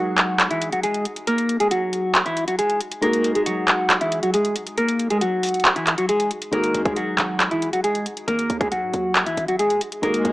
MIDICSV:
0, 0, Header, 1, 6, 480
1, 0, Start_track
1, 0, Tempo, 437956
1, 1394, Time_signature, 4, 2, 24, 8
1, 11316, End_track
2, 0, Start_track
2, 0, Title_t, "Felt piano"
2, 0, Program_c, 0, 0
2, 0, Control_c, 0, 64, 127
2, 0, Note_on_c, 0, 56, 67
2, 0, Note_on_c, 0, 63, 66
2, 0, Note_on_c, 0, 66, 62
2, 0, Note_on_c, 0, 68, 72
2, 3263, Note_off_c, 0, 56, 0
2, 3268, Note_off_c, 0, 63, 0
2, 3272, Note_off_c, 0, 66, 0
2, 3276, Note_off_c, 0, 68, 0
2, 3303, Note_on_c, 0, 56, 67
2, 3311, Note_on_c, 0, 63, 62
2, 3319, Note_on_c, 0, 66, 61
2, 3327, Note_on_c, 0, 68, 77
2, 3328, Control_c, 0, 64, 0
2, 3503, Control_c, 0, 64, 127
2, 7105, Note_off_c, 0, 56, 0
2, 7109, Note_off_c, 0, 63, 0
2, 7113, Note_off_c, 0, 66, 0
2, 7117, Note_off_c, 0, 68, 0
2, 7140, Note_on_c, 0, 56, 66
2, 7148, Note_on_c, 0, 63, 64
2, 7156, Note_on_c, 0, 66, 61
2, 7164, Note_on_c, 0, 68, 73
2, 7167, Control_c, 0, 64, 0
2, 7381, Control_c, 0, 64, 127
2, 10943, Note_off_c, 0, 56, 0
2, 10947, Note_off_c, 0, 63, 0
2, 10951, Note_off_c, 0, 66, 0
2, 10955, Note_off_c, 0, 68, 0
2, 10981, Note_on_c, 0, 56, 65
2, 10989, Note_on_c, 0, 63, 61
2, 10998, Note_on_c, 0, 66, 59
2, 11006, Control_c, 0, 64, 0
2, 11006, Note_on_c, 0, 68, 76
2, 11185, Control_c, 0, 64, 127
2, 11316, Note_off_c, 0, 56, 0
2, 11316, Note_off_c, 0, 63, 0
2, 11316, Note_off_c, 0, 66, 0
2, 11316, Note_off_c, 0, 68, 0
2, 11316, End_track
3, 0, Start_track
3, 0, Title_t, "Clean electric guitar"
3, 0, Program_c, 1, 27
3, 0, Note_on_c, 1, 54, 65
3, 0, Note_on_c, 1, 66, 84
3, 518, Note_off_c, 1, 66, 0
3, 523, Note_off_c, 1, 54, 0
3, 555, Note_on_c, 1, 64, 86
3, 563, Note_on_c, 1, 52, 61
3, 779, Note_off_c, 1, 64, 0
3, 784, Note_off_c, 1, 52, 0
3, 796, Note_on_c, 1, 66, 75
3, 804, Note_on_c, 1, 54, 58
3, 908, Note_off_c, 1, 66, 0
3, 912, Note_off_c, 1, 54, 0
3, 915, Note_on_c, 1, 68, 83
3, 924, Note_on_c, 1, 56, 64
3, 1140, Note_off_c, 1, 68, 0
3, 1144, Note_off_c, 1, 56, 0
3, 1396, Note_on_c, 1, 70, 110
3, 1404, Note_on_c, 1, 58, 82
3, 1734, Note_off_c, 1, 70, 0
3, 1738, Note_off_c, 1, 58, 0
3, 1755, Note_on_c, 1, 68, 80
3, 1763, Note_on_c, 1, 56, 67
3, 1867, Note_off_c, 1, 68, 0
3, 1871, Note_off_c, 1, 56, 0
3, 1876, Note_on_c, 1, 66, 86
3, 1885, Note_on_c, 1, 54, 62
3, 2439, Note_off_c, 1, 66, 0
3, 2444, Note_off_c, 1, 54, 0
3, 2476, Note_on_c, 1, 64, 87
3, 2484, Note_on_c, 1, 52, 67
3, 2700, Note_off_c, 1, 64, 0
3, 2704, Note_off_c, 1, 52, 0
3, 2715, Note_on_c, 1, 66, 76
3, 2725, Note_on_c, 1, 54, 55
3, 2827, Note_off_c, 1, 66, 0
3, 2832, Note_off_c, 1, 54, 0
3, 2835, Note_on_c, 1, 68, 89
3, 2844, Note_on_c, 1, 56, 69
3, 3060, Note_off_c, 1, 68, 0
3, 3064, Note_off_c, 1, 56, 0
3, 3315, Note_on_c, 1, 70, 105
3, 3323, Note_on_c, 1, 58, 84
3, 3653, Note_off_c, 1, 70, 0
3, 3657, Note_off_c, 1, 58, 0
3, 3675, Note_on_c, 1, 68, 80
3, 3682, Note_on_c, 1, 56, 65
3, 3787, Note_off_c, 1, 68, 0
3, 3791, Note_off_c, 1, 56, 0
3, 3794, Note_on_c, 1, 66, 86
3, 3802, Note_on_c, 1, 54, 68
3, 4358, Note_off_c, 1, 66, 0
3, 4362, Note_off_c, 1, 54, 0
3, 4396, Note_on_c, 1, 64, 78
3, 4404, Note_on_c, 1, 52, 65
3, 4620, Note_off_c, 1, 64, 0
3, 4624, Note_off_c, 1, 52, 0
3, 4635, Note_on_c, 1, 66, 77
3, 4644, Note_on_c, 1, 54, 58
3, 4747, Note_off_c, 1, 66, 0
3, 4751, Note_off_c, 1, 54, 0
3, 4755, Note_on_c, 1, 68, 78
3, 4763, Note_on_c, 1, 56, 63
3, 4979, Note_off_c, 1, 68, 0
3, 4984, Note_off_c, 1, 56, 0
3, 5235, Note_on_c, 1, 70, 107
3, 5244, Note_on_c, 1, 58, 83
3, 5573, Note_off_c, 1, 70, 0
3, 5578, Note_off_c, 1, 58, 0
3, 5595, Note_on_c, 1, 68, 87
3, 5604, Note_on_c, 1, 56, 66
3, 5707, Note_off_c, 1, 68, 0
3, 5712, Note_off_c, 1, 56, 0
3, 5713, Note_on_c, 1, 66, 89
3, 5722, Note_on_c, 1, 54, 65
3, 6278, Note_off_c, 1, 66, 0
3, 6282, Note_off_c, 1, 54, 0
3, 6314, Note_on_c, 1, 64, 84
3, 6322, Note_on_c, 1, 52, 62
3, 6539, Note_off_c, 1, 64, 0
3, 6543, Note_off_c, 1, 52, 0
3, 6554, Note_on_c, 1, 66, 72
3, 6563, Note_on_c, 1, 54, 54
3, 6667, Note_off_c, 1, 66, 0
3, 6671, Note_off_c, 1, 54, 0
3, 6675, Note_on_c, 1, 68, 86
3, 6683, Note_on_c, 1, 56, 62
3, 6899, Note_off_c, 1, 68, 0
3, 6904, Note_off_c, 1, 56, 0
3, 7154, Note_on_c, 1, 70, 109
3, 7163, Note_on_c, 1, 58, 78
3, 7493, Note_off_c, 1, 70, 0
3, 7497, Note_off_c, 1, 58, 0
3, 7515, Note_on_c, 1, 68, 77
3, 7523, Note_on_c, 1, 56, 64
3, 7627, Note_off_c, 1, 68, 0
3, 7631, Note_off_c, 1, 56, 0
3, 7634, Note_on_c, 1, 66, 82
3, 7642, Note_on_c, 1, 54, 63
3, 8198, Note_off_c, 1, 66, 0
3, 8202, Note_off_c, 1, 54, 0
3, 8233, Note_on_c, 1, 64, 85
3, 8242, Note_on_c, 1, 52, 60
3, 8458, Note_off_c, 1, 64, 0
3, 8463, Note_off_c, 1, 52, 0
3, 8473, Note_on_c, 1, 66, 75
3, 8481, Note_on_c, 1, 54, 56
3, 8586, Note_off_c, 1, 66, 0
3, 8590, Note_off_c, 1, 54, 0
3, 8592, Note_on_c, 1, 68, 83
3, 8601, Note_on_c, 1, 56, 62
3, 8818, Note_off_c, 1, 68, 0
3, 8822, Note_off_c, 1, 56, 0
3, 9071, Note_on_c, 1, 70, 107
3, 9080, Note_on_c, 1, 58, 81
3, 9411, Note_off_c, 1, 70, 0
3, 9415, Note_off_c, 1, 58, 0
3, 9432, Note_on_c, 1, 68, 81
3, 9441, Note_on_c, 1, 56, 66
3, 9545, Note_off_c, 1, 68, 0
3, 9550, Note_off_c, 1, 56, 0
3, 9553, Note_on_c, 1, 66, 84
3, 9562, Note_on_c, 1, 54, 65
3, 10118, Note_off_c, 1, 66, 0
3, 10122, Note_off_c, 1, 54, 0
3, 10153, Note_on_c, 1, 64, 84
3, 10161, Note_on_c, 1, 52, 68
3, 10378, Note_off_c, 1, 64, 0
3, 10383, Note_off_c, 1, 52, 0
3, 10394, Note_on_c, 1, 66, 77
3, 10403, Note_on_c, 1, 54, 56
3, 10506, Note_off_c, 1, 66, 0
3, 10511, Note_off_c, 1, 54, 0
3, 10513, Note_on_c, 1, 68, 84
3, 10521, Note_on_c, 1, 56, 68
3, 10738, Note_off_c, 1, 68, 0
3, 10743, Note_off_c, 1, 56, 0
3, 10994, Note_on_c, 1, 70, 105
3, 11003, Note_on_c, 1, 58, 81
3, 11316, Note_off_c, 1, 58, 0
3, 11316, Note_off_c, 1, 70, 0
3, 11316, End_track
4, 0, Start_track
4, 0, Title_t, "808-style bass"
4, 0, Program_c, 2, 38
4, 7153, Note_on_c, 2, 32, 111
4, 7384, Note_off_c, 2, 32, 0
4, 7394, Note_on_c, 2, 32, 111
4, 7855, Note_off_c, 2, 32, 0
4, 7874, Note_on_c, 2, 32, 107
4, 9030, Note_off_c, 2, 32, 0
4, 9074, Note_on_c, 2, 32, 110
4, 9305, Note_off_c, 2, 32, 0
4, 9314, Note_on_c, 2, 39, 109
4, 9674, Note_on_c, 2, 44, 96
4, 9690, Note_off_c, 2, 39, 0
4, 9788, Note_off_c, 2, 44, 0
4, 9795, Note_on_c, 2, 39, 104
4, 10255, Note_off_c, 2, 39, 0
4, 10274, Note_on_c, 2, 32, 107
4, 10633, Note_on_c, 2, 39, 102
4, 10650, Note_off_c, 2, 32, 0
4, 10748, Note_off_c, 2, 39, 0
4, 10993, Note_on_c, 2, 32, 113
4, 11224, Note_off_c, 2, 32, 0
4, 11233, Note_on_c, 2, 39, 109
4, 11316, Note_off_c, 2, 39, 0
4, 11316, End_track
5, 0, Start_track
5, 0, Title_t, "Swell"
5, 0, Program_c, 3, 103
5, 10994, Note_on_c, 3, 60, 86
5, 11316, Note_off_c, 3, 60, 0
5, 11316, End_track
6, 0, Start_track
6, 0, Title_t, "Drums"
6, 194, Note_on_c, 9, 39, 98
6, 195, Note_on_c, 9, 42, 62
6, 304, Note_off_c, 9, 39, 0
6, 304, Note_off_c, 9, 42, 0
6, 434, Note_on_c, 9, 39, 108
6, 434, Note_on_c, 9, 42, 70
6, 544, Note_off_c, 9, 39, 0
6, 544, Note_off_c, 9, 42, 0
6, 555, Note_on_c, 9, 42, 52
6, 664, Note_off_c, 9, 42, 0
6, 675, Note_on_c, 9, 42, 79
6, 785, Note_off_c, 9, 42, 0
6, 795, Note_on_c, 9, 42, 64
6, 904, Note_off_c, 9, 42, 0
6, 914, Note_on_c, 9, 42, 91
6, 1024, Note_off_c, 9, 42, 0
6, 1035, Note_on_c, 9, 42, 62
6, 1144, Note_off_c, 9, 42, 0
6, 1154, Note_on_c, 9, 42, 79
6, 1264, Note_off_c, 9, 42, 0
6, 1275, Note_on_c, 9, 42, 65
6, 1384, Note_off_c, 9, 42, 0
6, 1395, Note_on_c, 9, 42, 78
6, 1504, Note_off_c, 9, 42, 0
6, 1515, Note_on_c, 9, 42, 64
6, 1624, Note_off_c, 9, 42, 0
6, 1635, Note_on_c, 9, 42, 67
6, 1745, Note_off_c, 9, 42, 0
6, 1755, Note_on_c, 9, 42, 57
6, 1865, Note_off_c, 9, 42, 0
6, 1875, Note_on_c, 9, 42, 78
6, 1985, Note_off_c, 9, 42, 0
6, 2115, Note_on_c, 9, 42, 64
6, 2224, Note_off_c, 9, 42, 0
6, 2355, Note_on_c, 9, 39, 110
6, 2355, Note_on_c, 9, 42, 68
6, 2465, Note_off_c, 9, 39, 0
6, 2465, Note_off_c, 9, 42, 0
6, 2475, Note_on_c, 9, 42, 52
6, 2584, Note_off_c, 9, 42, 0
6, 2595, Note_on_c, 9, 42, 79
6, 2704, Note_off_c, 9, 42, 0
6, 2715, Note_on_c, 9, 42, 64
6, 2825, Note_off_c, 9, 42, 0
6, 2836, Note_on_c, 9, 42, 95
6, 2945, Note_off_c, 9, 42, 0
6, 2955, Note_on_c, 9, 42, 60
6, 3065, Note_off_c, 9, 42, 0
6, 3075, Note_on_c, 9, 42, 79
6, 3185, Note_off_c, 9, 42, 0
6, 3195, Note_on_c, 9, 42, 67
6, 3305, Note_off_c, 9, 42, 0
6, 3315, Note_on_c, 9, 42, 78
6, 3425, Note_off_c, 9, 42, 0
6, 3435, Note_on_c, 9, 42, 63
6, 3544, Note_off_c, 9, 42, 0
6, 3554, Note_on_c, 9, 42, 66
6, 3664, Note_off_c, 9, 42, 0
6, 3675, Note_on_c, 9, 42, 54
6, 3784, Note_off_c, 9, 42, 0
6, 3794, Note_on_c, 9, 42, 82
6, 3904, Note_off_c, 9, 42, 0
6, 4034, Note_on_c, 9, 39, 99
6, 4034, Note_on_c, 9, 42, 64
6, 4143, Note_off_c, 9, 39, 0
6, 4144, Note_off_c, 9, 42, 0
6, 4274, Note_on_c, 9, 39, 113
6, 4274, Note_on_c, 9, 42, 71
6, 4384, Note_off_c, 9, 39, 0
6, 4384, Note_off_c, 9, 42, 0
6, 4395, Note_on_c, 9, 42, 53
6, 4504, Note_off_c, 9, 42, 0
6, 4515, Note_on_c, 9, 42, 78
6, 4624, Note_off_c, 9, 42, 0
6, 4635, Note_on_c, 9, 42, 62
6, 4744, Note_off_c, 9, 42, 0
6, 4754, Note_on_c, 9, 42, 95
6, 4863, Note_off_c, 9, 42, 0
6, 4874, Note_on_c, 9, 42, 61
6, 4984, Note_off_c, 9, 42, 0
6, 4994, Note_on_c, 9, 42, 78
6, 5104, Note_off_c, 9, 42, 0
6, 5114, Note_on_c, 9, 42, 67
6, 5224, Note_off_c, 9, 42, 0
6, 5234, Note_on_c, 9, 42, 75
6, 5344, Note_off_c, 9, 42, 0
6, 5354, Note_on_c, 9, 42, 65
6, 5463, Note_off_c, 9, 42, 0
6, 5474, Note_on_c, 9, 42, 66
6, 5584, Note_off_c, 9, 42, 0
6, 5594, Note_on_c, 9, 42, 56
6, 5703, Note_off_c, 9, 42, 0
6, 5714, Note_on_c, 9, 42, 79
6, 5823, Note_off_c, 9, 42, 0
6, 5954, Note_on_c, 9, 42, 64
6, 5954, Note_on_c, 9, 46, 70
6, 6014, Note_off_c, 9, 42, 0
6, 6014, Note_on_c, 9, 42, 57
6, 6064, Note_off_c, 9, 46, 0
6, 6074, Note_off_c, 9, 42, 0
6, 6074, Note_on_c, 9, 42, 48
6, 6134, Note_off_c, 9, 42, 0
6, 6134, Note_on_c, 9, 42, 38
6, 6193, Note_off_c, 9, 42, 0
6, 6193, Note_on_c, 9, 39, 111
6, 6193, Note_on_c, 9, 42, 70
6, 6303, Note_off_c, 9, 39, 0
6, 6303, Note_off_c, 9, 42, 0
6, 6313, Note_on_c, 9, 42, 51
6, 6422, Note_off_c, 9, 42, 0
6, 6432, Note_on_c, 9, 39, 93
6, 6432, Note_on_c, 9, 42, 78
6, 6542, Note_off_c, 9, 39, 0
6, 6542, Note_off_c, 9, 42, 0
6, 6553, Note_on_c, 9, 42, 63
6, 6662, Note_off_c, 9, 42, 0
6, 6673, Note_on_c, 9, 42, 93
6, 6783, Note_off_c, 9, 42, 0
6, 6793, Note_on_c, 9, 42, 62
6, 6903, Note_off_c, 9, 42, 0
6, 6913, Note_on_c, 9, 42, 77
6, 7023, Note_off_c, 9, 42, 0
6, 7033, Note_on_c, 9, 42, 66
6, 7143, Note_off_c, 9, 42, 0
6, 7153, Note_on_c, 9, 42, 76
6, 7262, Note_off_c, 9, 42, 0
6, 7273, Note_on_c, 9, 42, 66
6, 7383, Note_off_c, 9, 42, 0
6, 7393, Note_on_c, 9, 42, 66
6, 7502, Note_off_c, 9, 42, 0
6, 7513, Note_on_c, 9, 36, 98
6, 7513, Note_on_c, 9, 42, 55
6, 7622, Note_off_c, 9, 42, 0
6, 7623, Note_off_c, 9, 36, 0
6, 7633, Note_on_c, 9, 42, 81
6, 7742, Note_off_c, 9, 42, 0
6, 7873, Note_on_c, 9, 39, 95
6, 7873, Note_on_c, 9, 42, 65
6, 7982, Note_off_c, 9, 39, 0
6, 7983, Note_off_c, 9, 42, 0
6, 8113, Note_on_c, 9, 39, 115
6, 8113, Note_on_c, 9, 42, 69
6, 8222, Note_off_c, 9, 42, 0
6, 8223, Note_off_c, 9, 39, 0
6, 8233, Note_on_c, 9, 42, 52
6, 8343, Note_off_c, 9, 42, 0
6, 8353, Note_on_c, 9, 42, 78
6, 8463, Note_off_c, 9, 42, 0
6, 8473, Note_on_c, 9, 42, 66
6, 8583, Note_off_c, 9, 42, 0
6, 8593, Note_on_c, 9, 42, 96
6, 8703, Note_off_c, 9, 42, 0
6, 8713, Note_on_c, 9, 42, 61
6, 8823, Note_off_c, 9, 42, 0
6, 8834, Note_on_c, 9, 42, 79
6, 8943, Note_off_c, 9, 42, 0
6, 8954, Note_on_c, 9, 42, 62
6, 9063, Note_off_c, 9, 42, 0
6, 9073, Note_on_c, 9, 42, 79
6, 9183, Note_off_c, 9, 42, 0
6, 9194, Note_on_c, 9, 42, 65
6, 9303, Note_off_c, 9, 42, 0
6, 9313, Note_on_c, 9, 42, 66
6, 9423, Note_off_c, 9, 42, 0
6, 9434, Note_on_c, 9, 36, 97
6, 9434, Note_on_c, 9, 42, 57
6, 9543, Note_off_c, 9, 36, 0
6, 9543, Note_off_c, 9, 42, 0
6, 9554, Note_on_c, 9, 42, 84
6, 9663, Note_off_c, 9, 42, 0
6, 9793, Note_on_c, 9, 42, 65
6, 9903, Note_off_c, 9, 42, 0
6, 10033, Note_on_c, 9, 39, 115
6, 10033, Note_on_c, 9, 42, 70
6, 10143, Note_off_c, 9, 39, 0
6, 10143, Note_off_c, 9, 42, 0
6, 10153, Note_on_c, 9, 42, 54
6, 10263, Note_off_c, 9, 42, 0
6, 10274, Note_on_c, 9, 42, 76
6, 10383, Note_off_c, 9, 42, 0
6, 10394, Note_on_c, 9, 42, 63
6, 10504, Note_off_c, 9, 42, 0
6, 10514, Note_on_c, 9, 42, 91
6, 10624, Note_off_c, 9, 42, 0
6, 10634, Note_on_c, 9, 42, 60
6, 10743, Note_off_c, 9, 42, 0
6, 10753, Note_on_c, 9, 42, 77
6, 10863, Note_off_c, 9, 42, 0
6, 10873, Note_on_c, 9, 42, 67
6, 10983, Note_off_c, 9, 42, 0
6, 10993, Note_on_c, 9, 42, 76
6, 11102, Note_off_c, 9, 42, 0
6, 11114, Note_on_c, 9, 42, 65
6, 11223, Note_off_c, 9, 42, 0
6, 11233, Note_on_c, 9, 42, 67
6, 11316, Note_off_c, 9, 42, 0
6, 11316, End_track
0, 0, End_of_file